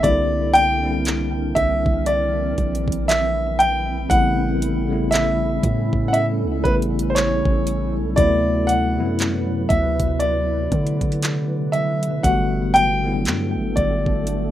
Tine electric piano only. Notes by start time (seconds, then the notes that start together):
0.02 D3 G3 A#3 C4 E4
0.82 D3 G3 A#3 C4 E4
4.09 C#3 G3 A3 B3 E4
4.89 C#3 G3 A3 B3 E4
6.63 C#3 G3 A3 B3 E4
8.16 C3 F#3 A3 B3 E4
8.96 C3 F#3 A3 B3 E4
12.23 D3 G3 A3 B3 F#4
13.03 D3 G3 A3 B3 E4
13.14 F#3